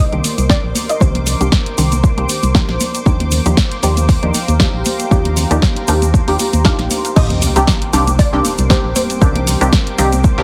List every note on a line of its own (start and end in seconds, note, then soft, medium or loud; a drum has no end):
0.00 2.77 A#4 medium
0.00 7.15 C5 medium
0.00 0.46 D#5 loud
0.00 2.77 C6 medium
0.00 4.82 D6 medium
0.00 7.15 D6 medium
0.12 0.21 C2 medium
0.12 0.27 D#3 medium
0.12 0.27 A#3 medium
0.12 0.27 C4 medium
0.12 0.27 D4 medium
0.12 0.27 G4 loud
0.12 closed hi-hat soft
0.24 open hi-hat loud
0.24 high conga medium
0.24 shaker medium
0.38 0.57 C2 medium
0.38 closed hi-hat medium
0.38 shaker soft
0.49 0.98 D#3 medium
0.49 0.98 A#3 medium
0.49 0.98 C4 medium
0.49 0.98 D4 medium
0.49 0.98 G4 loud
0.49 0.87 D5 loud
0.49 kick loud
0.49 snare loud
0.49 shaker soft
0.64 0.73 A#1 medium
0.75 open hi-hat loud
0.75 muted conga soft
0.75 high conga medium
0.75 shaker medium
0.89 1.00 D#5 loud
0.89 closed hi-hat medium
0.89 shaker soft
1.00 1.35 C2 loud
1.00 1.37 D#3 medium
1.00 1.37 A#3 medium
1.00 1.37 C4 medium
1.00 1.37 D4 medium
1.00 1.38 G4 medium
1.00 2.77 C5 medium
1.00 kick loud
1.00 low conga medium
1.00 shaker soft
1.15 closed hi-hat medium
1.15 high conga medium
1.15 low conga medium
1.26 open hi-hat loud
1.26 muted conga medium
1.26 low conga medium
1.26 shaker medium
1.40 1.50 C2 medium
1.40 1.49 D#3 loud
1.40 1.49 A#3 medium
1.40 1.50 C4 medium
1.40 1.50 D4 medium
1.40 1.50 G4 loud
1.40 closed hi-hat medium
1.40 shaker soft
1.52 kick loud
1.52 snare loud
1.52 high conga medium
1.52 shaker soft
1.66 closed hi-hat medium
1.78 2.12 C2 medium
1.78 1.88 D#3 loud
1.78 1.88 A#3 medium
1.78 1.89 C4 medium
1.78 1.89 D4 medium
1.78 1.89 G4 loud
1.78 open hi-hat loud
1.78 shaker medium
1.92 closed hi-hat medium
1.92 high conga medium
1.92 shaker soft
2.04 kick loud
2.04 shaker soft
2.17 2.26 C2 medium
2.17 2.32 D#3 medium
2.17 2.32 A#3 medium
2.17 2.32 C4 medium
2.17 2.32 D4 medium
2.17 2.32 G4 loud
2.17 closed hi-hat soft
2.29 open hi-hat loud
2.29 high conga medium
2.29 shaker medium
2.43 2.62 C2 medium
2.43 closed hi-hat medium
2.43 muted conga medium
2.43 shaker soft
2.55 3.03 F3 medium
2.55 3.03 A#3 medium
2.55 3.03 D4 medium
2.55 3.04 D#4 medium
2.55 3.04 G4 loud
2.55 kick loud
2.55 snare loud
2.55 shaker soft
2.69 2.78 A#1 medium
2.69 snare soft
2.69 muted conga medium
2.80 7.13 G4 medium
2.80 7.13 F5 medium
2.80 7.13 A#5 medium
2.80 open hi-hat loud
2.80 high conga medium
2.80 shaker medium
2.94 closed hi-hat medium
2.94 shaker soft
3.06 3.40 D#2 loud
3.06 3.42 F3 medium
3.06 3.42 A#3 medium
3.06 3.42 D4 medium
3.06 3.43 D#4 medium
3.06 3.43 G4 medium
3.06 kick loud
3.06 low conga medium
3.06 shaker soft
3.20 closed hi-hat medium
3.20 high conga medium
3.20 low conga medium
3.31 open hi-hat loud
3.31 muted conga soft
3.31 low conga medium
3.31 shaker medium
3.46 3.55 D#2 loud
3.46 3.55 F3 loud
3.46 3.55 A#3 medium
3.46 3.55 D4 medium
3.46 3.55 D#4 medium
3.46 3.55 G4 loud
3.46 closed hi-hat medium
3.46 shaker soft
3.57 kick loud
3.57 snare loud
3.57 high conga medium
3.57 shaker soft
3.71 closed hi-hat medium
3.83 4.17 D#2 medium
3.83 3.94 F3 medium
3.83 3.94 A#3 medium
3.83 3.94 D4 medium
3.83 3.94 D#4 medium
3.83 3.94 G4 loud
3.83 snare soft
3.83 open hi-hat medium
3.83 shaker medium
3.97 closed hi-hat medium
3.97 high conga medium
3.97 shaker medium
4.09 kick loud
4.09 open hi-hat medium
4.09 shaker soft
4.22 4.32 D#2 medium
4.22 4.37 F3 medium
4.22 4.37 A#3 medium
4.22 4.37 D4 medium
4.22 4.37 D#4 medium
4.22 4.37 G4 loud
4.22 closed hi-hat soft
4.34 open hi-hat loud
4.34 high conga medium
4.34 shaker medium
4.48 4.67 D#2 medium
4.48 closed hi-hat medium
4.48 shaker soft
4.60 5.08 F3 medium
4.60 5.08 A#3 medium
4.60 5.09 D4 medium
4.60 5.09 D#4 medium
4.60 5.09 G4 loud
4.60 kick loud
4.60 snare loud
4.60 shaker soft
4.74 4.83 A#1 medium
4.85 7.14 C6 medium
4.85 open hi-hat loud
4.85 muted conga soft
4.85 high conga medium
4.85 shaker medium
4.99 closed hi-hat medium
4.99 shaker soft
5.11 5.45 D#2 loud
5.11 5.47 F3 medium
5.11 5.48 A#3 medium
5.11 5.48 D4 medium
5.11 5.48 D#4 medium
5.11 5.48 G4 medium
5.11 kick loud
5.11 low conga medium
5.11 shaker soft
5.25 closed hi-hat medium
5.25 high conga medium
5.25 low conga medium
5.36 open hi-hat loud
5.36 muted conga medium
5.36 low conga medium
5.36 shaker medium
5.51 5.60 D#2 medium
5.51 5.60 F3 loud
5.51 5.60 A#3 medium
5.51 5.60 D4 medium
5.51 5.60 D#4 medium
5.51 5.60 G4 loud
5.51 closed hi-hat medium
5.51 shaker soft
5.62 kick loud
5.62 snare loud
5.62 high conga medium
5.62 shaker soft
5.76 closed hi-hat medium
5.88 6.22 D#2 medium
5.88 5.99 F3 loud
5.88 5.99 A#3 medium
5.88 5.99 D4 medium
5.88 5.99 D#4 medium
5.88 5.99 G4 loud
5.88 open hi-hat loud
5.88 shaker medium
6.02 closed hi-hat medium
6.02 high conga medium
6.02 shaker medium
6.14 kick loud
6.14 shaker soft
6.28 6.37 D#2 medium
6.28 6.42 F3 medium
6.28 6.42 A#3 medium
6.28 6.42 D4 medium
6.28 6.42 D#4 medium
6.28 6.43 G4 loud
6.28 open hi-hat medium
6.39 open hi-hat loud
6.39 high conga medium
6.39 shaker medium
6.53 6.72 D#2 medium
6.53 closed hi-hat medium
6.53 muted conga medium
6.53 shaker soft
6.65 7.13 F3 medium
6.65 7.14 A#3 medium
6.65 7.14 D4 medium
6.65 7.14 D#4 medium
6.65 7.14 G4 loud
6.65 7.18 F5 loud
6.65 kick loud
6.65 snare loud
6.65 shaker soft
6.79 6.88 A#1 medium
6.79 snare soft
6.79 closed hi-hat soft
6.79 muted conga medium
6.91 open hi-hat loud
6.91 high conga medium
6.91 shaker medium
7.05 closed hi-hat medium
7.05 shaker soft
7.16 7.51 C2 loud
7.16 7.53 D3 medium
7.16 7.53 D#3 medium
7.16 10.43 G3 medium
7.16 7.53 A#3 medium
7.16 7.53 C4 medium
7.16 10.43 C4 medium
7.16 10.43 G4 medium
7.16 7.53 G4 medium
7.16 10.43 A#4 medium
7.16 10.43 C5 medium
7.16 8.22 D#5 loud
7.16 10.43 D6 medium
7.16 kick loud
7.16 crash loud
7.16 sub drop medium
7.16 low conga medium
7.16 shaker soft
7.30 closed hi-hat medium
7.30 high conga medium
7.30 low conga medium
7.41 open hi-hat loud
7.41 muted conga medium
7.41 low conga medium
7.41 shaker loud
7.56 7.65 C2 medium
7.56 7.65 D#3 loud
7.56 7.65 A#3 medium
7.56 7.65 C4 medium
7.56 7.65 D4 medium
7.56 7.65 G4 loud
7.56 closed hi-hat medium
7.56 shaker medium
7.67 kick loud
7.67 snare loud
7.67 high conga medium
7.67 shaker soft
7.82 closed hi-hat medium
7.93 8.28 C2 loud
7.93 8.04 D#3 loud
7.93 8.04 A#3 medium
7.93 8.04 C4 medium
7.93 8.04 D4 medium
7.93 8.04 G4 loud
7.93 open hi-hat loud
7.93 shaker medium
8.07 closed hi-hat medium
8.07 high conga loud
8.07 shaker medium
8.19 8.72 D5 medium
8.19 kick loud
8.19 open hi-hat medium
8.19 shaker soft
8.33 8.42 C2 medium
8.33 8.47 D#3 loud
8.33 8.47 A#3 medium
8.33 8.48 C4 medium
8.33 8.48 D4 medium
8.33 8.48 G4 loud
8.45 open hi-hat loud
8.45 high conga medium
8.45 shaker medium
8.58 8.77 C2 medium
8.58 closed hi-hat medium
8.58 shaker medium
8.70 9.19 D#3 medium
8.70 9.19 A#3 medium
8.70 9.19 C4 medium
8.70 9.19 D4 medium
8.70 9.19 G4 loud
8.70 8.94 C5 medium
8.70 kick loud
8.70 snare loud
8.70 shaker soft
8.84 8.93 A#1 medium
8.96 9.44 C5 medium
8.96 open hi-hat loud
8.96 muted conga soft
8.96 high conga loud
8.96 shaker medium
9.10 closed hi-hat medium
9.10 shaker soft
9.21 9.56 C2 loud
9.21 9.58 D#3 medium
9.21 9.58 A#3 medium
9.21 9.58 C4 medium
9.21 9.58 D4 medium
9.21 9.58 G4 loud
9.21 kick loud
9.21 low conga loud
9.21 shaker soft
9.35 closed hi-hat medium
9.35 high conga loud
9.35 low conga medium
9.47 open hi-hat loud
9.47 muted conga medium
9.47 low conga medium
9.47 shaker loud
9.61 9.70 C2 loud
9.61 9.70 D#3 loud
9.61 9.70 A#3 medium
9.61 9.70 C4 medium
9.61 9.70 D4 loud
9.61 9.70 G4 loud
9.61 closed hi-hat medium
9.61 shaker medium
9.72 kick loud
9.72 snare loud
9.72 high conga medium
9.72 shaker soft
9.87 closed hi-hat medium
9.98 10.33 C2 loud
9.98 10.09 D#3 loud
9.98 10.09 A#3 medium
9.98 10.09 C4 medium
9.98 10.09 D4 medium
9.98 10.09 G4 loud
9.98 open hi-hat loud
9.98 shaker medium
10.12 closed hi-hat medium
10.12 high conga medium
10.12 shaker medium
10.24 kick loud
10.24 shaker soft
10.38 10.43 C2 medium
10.38 10.43 D#3 medium
10.38 10.43 A#3 medium
10.38 10.43 C4 medium
10.38 10.43 D4 medium
10.38 10.43 G4 loud
10.38 snare soft